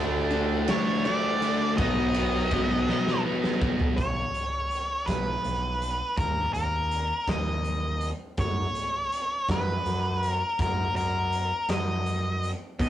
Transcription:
0.00 0.68 D2 loud
0.00 0.30 D3 medium
0.00 0.66 D3 loud
0.00 0.31 E3 medium
0.00 0.32 A3 loud
0.00 0.66 A3 loud
0.00 0.32 D4 loud
0.00 0.67 D4 loud
0.30 0.67 D3 medium
0.30 0.68 E3 medium
0.30 0.67 A3 medium
0.30 0.68 D4 medium
0.30 ride medium
0.68 1.04 D3 medium
0.68 1.04 E3 medium
0.68 1.05 A3 loud
0.68 1.06 D4 medium
0.68 1.05 C#5 medium
0.68 snare loud
0.68 ride loud
1.05 1.39 D3 medium
1.05 1.40 E3 medium
1.05 1.41 A3 medium
1.05 1.41 D4 medium
1.05 1.77 D5 loud
1.05 ride medium
1.41 1.76 D3 medium
1.41 1.76 E3 medium
1.41 1.76 A3 loud
1.41 1.76 D4 loud
1.41 ride medium
1.77 2.89 B1 loud
1.77 2.13 B2 medium
1.77 2.14 F#3 loud
1.77 2.14 B3 loud
1.77 2.14 D#4 loud
1.77 3.20 D#5 loud
1.77 kick loud
1.77 ride loud
2.14 2.50 B2 medium
2.14 2.51 F#3 medium
2.14 2.51 B3 medium
2.14 2.51 D#4 medium
2.14 ride medium
2.51 2.86 B2 medium
2.51 2.87 F#3 medium
2.51 2.87 B3 loud
2.51 2.87 D#4 medium
2.51 kick medium
2.51 ride medium
2.87 3.22 B2 medium
2.87 3.22 F#3 medium
2.87 3.23 B3 medium
2.87 3.23 D#4 loud
2.87 snare medium
3.07 snare medium
3.23 3.60 B2 medium
3.23 3.60 F#3 medium
3.23 3.61 B3 medium
3.23 3.62 D#4 medium
3.44 snare medium
3.61 3.96 B2 medium
3.61 3.96 F#3 medium
3.61 3.96 B3 medium
3.61 3.97 D#4 medium
3.61 kick loud
3.80 floor tom loud
3.97 4.26 B1 loud
3.97 5.11 C#5 loud
3.97 kick loud
3.97 closed hi-hat medium
4.34 closed hi-hat medium
4.71 closed hi-hat medium
5.06 5.35 B1 medium
5.06 6.17 B4 medium
5.06 kick medium
5.06 snare loud
5.06 closed hi-hat loud
5.44 6.00 B1 medium
5.44 closed hi-hat medium
5.82 closed hi-hat medium
6.17 6.45 D#2 medium
6.17 6.52 A#4 loud
6.17 kick loud
6.17 closed hi-hat medium
6.53 7.11 D#2 medium
6.53 7.30 A#4 medium
6.53 closed hi-hat medium
6.91 closed hi-hat medium
7.28 8.11 D#2 loud
7.28 8.08 D#5 loud
7.28 kick medium
7.28 snare loud
7.28 closed hi-hat medium
7.64 closed hi-hat medium
8.01 closed hi-hat medium
8.37 8.66 F#2 loud
8.37 9.53 C#5 loud
8.37 kick loud
8.37 closed hi-hat medium
8.75 closed hi-hat medium
9.12 closed hi-hat medium
9.48 9.77 F#2 medium
9.48 10.26 B4 medium
9.48 kick medium
9.48 snare loud
9.48 closed hi-hat medium
9.86 10.41 F#2 medium
9.86 closed hi-hat medium
10.23 10.61 A#4 medium
10.23 closed hi-hat medium
10.59 10.87 F#2 medium
10.59 10.95 A#4 medium
10.59 kick loud
10.59 closed hi-hat loud
10.94 11.50 F#2 medium
10.94 11.72 A#4 medium
10.94 closed hi-hat medium
11.32 closed hi-hat medium
11.69 12.52 F#2 medium
11.69 12.48 D#5 loud
11.69 snare loud
11.69 closed hi-hat loud
12.06 closed hi-hat medium
12.43 closed hi-hat medium
12.79 12.89 B1 loud
12.79 12.89 B2 medium
12.79 12.89 F#3 medium
12.79 12.89 B3 loud
12.79 12.89 D#4 loud
12.79 12.89 D#5 medium
12.79 kick loud
12.79 closed hi-hat medium

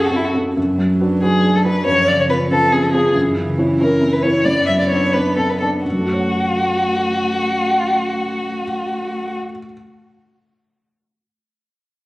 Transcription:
0.00 0.57 F#2 soft
0.00 0.11 C#4 soft
0.00 0.11 F#4 soft
0.00 0.12 A4 soft
0.00 0.21 A4 soft
0.05 0.17 F#4 soft
0.11 0.32 C#4 soft
0.11 0.32 F#4 soft
0.11 0.32 A4 soft
0.16 0.26 E4 soft
0.25 0.34 F#4 soft
0.34 0.54 C#4 soft
0.34 0.54 F#4 soft
0.34 0.54 A4 soft
0.56 1.83 F#2 soft
0.56 1.82 F#3 soft
0.78 1.13 F#3 soft
1.00 1.20 D4 soft
1.00 1.20 F#4 soft
1.00 1.20 B4 soft
1.22 1.41 D4 soft
1.22 1.41 F#4 soft
1.22 1.57 G#4 medium
1.22 1.42 B4 soft
1.43 1.64 D4 soft
1.56 1.65 A4 soft
1.65 1.84 D4 soft
1.65 1.85 F#4 soft
1.65 1.86 B4 medium
1.65 1.85 B4 soft
1.86 3.11 F#2 soft
1.86 3.12 F3 soft
1.86 2.09 C#5 medium
2.08 2.42 C#3 soft
2.08 2.18 D5 medium
2.20 2.24 C#5 medium
2.29 2.48 C#4 soft
2.29 2.48 F4 soft
2.29 2.49 B4 soft
2.29 2.38 B4 medium
2.51 2.70 C#4 soft
2.51 2.70 F4 soft
2.51 2.74 A4 medium
2.51 2.70 B4 soft
2.72 2.92 C#4 soft
2.72 2.85 G#4 soft
2.83 2.93 A4 soft
2.93 3.13 C#4 soft
2.93 3.13 F4 soft
2.93 3.14 G#4 medium
2.93 3.13 B4 soft
3.15 4.42 F#2 soft
3.15 4.47 E3 soft
3.36 3.71 C#3 soft
3.58 3.78 C#4 soft
3.58 3.78 E4 soft
3.58 3.78 C#5 soft
3.80 4.00 C#4 soft
3.80 4.00 E4 soft
3.80 4.14 A#4 medium
3.80 4.00 C#5 soft
4.01 4.22 C#4 soft
4.13 4.24 B4 soft
4.23 4.43 C#4 soft
4.23 4.44 E4 soft
4.23 4.46 C#5 medium
4.23 4.44 C#5 soft
4.45 5.81 F#2 soft
4.45 5.63 B3 soft
4.45 4.66 D5 medium
4.67 5.05 F#3 soft
4.67 4.71 E5 medium
4.79 4.89 D5 soft
4.89 5.12 B3 soft
4.89 5.12 D4 soft
4.89 5.14 C#5 medium
4.89 5.12 D5 soft
5.13 5.35 B3 soft
5.13 5.35 D4 soft
5.13 5.37 B4 medium
5.13 5.36 D5 soft
5.37 5.60 B3 soft
5.37 5.51 A4 soft
5.49 5.59 B4 soft
5.60 5.82 B3 soft
5.60 5.83 D4 soft
5.60 5.68 A4 soft
5.60 5.83 D5 soft
5.84 9.36 F#2 soft
5.84 9.35 A3 soft
5.84 9.36 F#4 soft
5.92 9.43 F#3 soft
5.99 9.50 A3 soft
6.06 9.57 F#4 soft
6.13 9.64 C#5 soft
6.20 9.71 F#5 soft

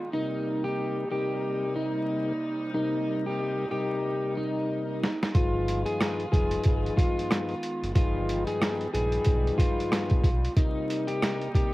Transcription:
0.13 5.31 C3 medium
0.13 1.05 C3 loud
0.13 5.31 G3 medium
0.13 1.05 G3 medium
0.13 5.31 A#3 medium
0.13 5.31 D#4 medium
0.13 0.62 D#4 loud
0.13 1.05 D#4 loud
0.13 1.05 A#4 loud
0.64 1.08 G4 medium
1.11 2.33 C3 medium
1.11 2.33 G3 medium
1.11 2.33 D#4 medium
1.11 1.73 G4 medium
1.11 2.33 A#4 loud
1.76 2.70 D#4 medium
2.74 3.65 C3 loud
2.74 3.66 G3 loud
2.74 3.66 D#4 medium
2.74 3.23 D#4 loud
2.74 3.66 A#4 loud
3.26 3.69 G4 medium
3.71 5.07 C3 medium
3.71 5.07 G3 medium
3.71 5.08 D#4 medium
3.71 4.33 G4 medium
3.71 5.08 A#4 loud
4.37 5.31 D#4 medium
5.03 snare loud
5.23 snare loud
5.34 5.84 G1 loud
5.34 6.26 G2 loud
5.34 10.52 D#3 medium
5.34 6.26 F3 medium
5.34 10.52 G#3 medium
5.34 10.52 B3 medium
5.34 6.27 D#4 medium
5.34 7.93 F4 medium
5.34 5.84 F4 loud
5.34 6.27 G#4 medium
5.34 6.27 B4 loud
5.34 kick loud
5.34 closed hi-hat loud
5.68 closed hi-hat medium
5.86 6.29 G#4 medium
5.86 closed hi-hat soft
6.01 cross-stick medium
6.01 snare loud
6.01 closed hi-hat medium
6.20 closed hi-hat soft
6.32 6.58 F1 medium
6.32 7.54 G2 medium
6.32 7.54 F3 medium
6.32 7.54 D#4 medium
6.32 6.94 G#4 medium
6.32 7.54 G#4 medium
6.32 7.54 B4 loud
6.32 kick loud
6.32 closed hi-hat medium
6.51 closed hi-hat medium
6.63 6.90 G1 loud
6.63 kick loud
6.63 closed hi-hat medium
6.86 closed hi-hat soft
6.97 7.91 F4 medium
6.97 kick loud
6.97 closed hi-hat medium
7.19 closed hi-hat medium
7.31 cross-stick medium
7.31 snare loud
7.31 closed hi-hat medium
7.49 closed hi-hat soft
7.63 closed hi-hat medium
7.83 7.93 F#1 medium
7.83 closed hi-hat medium
7.94 8.45 G1 loud
7.94 8.87 G2 loud
7.94 8.87 F3 medium
7.94 10.53 G3 medium
7.94 8.87 D#4 medium
7.94 8.44 F4 loud
7.94 8.87 G#4 medium
7.94 8.88 B4 loud
7.94 kick loud
7.94 closed hi-hat loud
8.29 closed hi-hat medium
8.47 8.91 G#4 medium
8.47 closed hi-hat medium
8.62 cross-stick medium
8.62 snare loud
8.62 closed hi-hat medium
8.81 closed hi-hat soft
8.93 9.18 A#1 loud
8.93 10.29 G2 medium
8.93 10.29 F3 medium
8.93 10.29 D#4 medium
8.93 10.29 G#4 medium
8.93 9.55 G#4 medium
8.93 10.29 B4 loud
8.93 closed hi-hat medium
9.12 closed hi-hat medium
9.25 9.51 B1 loud
9.25 kick loud
9.25 closed hi-hat medium
9.47 closed hi-hat soft
9.58 10.52 F4 medium
9.58 kick loud
9.58 closed hi-hat medium
9.80 closed hi-hat medium
9.92 cross-stick medium
9.92 snare loud
9.92 closed hi-hat medium
10.10 kick loud
10.10 closed hi-hat soft
10.24 10.48 B1 loud
10.24 kick medium
10.24 closed hi-hat medium
10.45 closed hi-hat medium
10.56 11.74 C3 medium
10.56 11.48 C3 loud
10.56 11.74 G3 medium
10.56 11.48 G3 medium
10.56 11.74 A#3 medium
10.56 11.74 D#4 loud
10.56 11.06 D#4 loud
10.56 11.48 D#4 loud
10.56 11.49 A#4 loud
10.56 kick loud
10.56 closed hi-hat loud
10.90 closed hi-hat medium
11.07 11.51 G4 medium
11.07 closed hi-hat soft
11.22 cross-stick medium
11.22 snare loud
11.22 closed hi-hat medium
11.42 closed hi-hat soft
11.54 11.74 C3 medium
11.54 11.74 G3 medium
11.54 11.74 D#4 medium
11.54 11.74 G4 medium
11.54 11.74 A#4 loud
11.54 kick loud
11.54 closed hi-hat medium

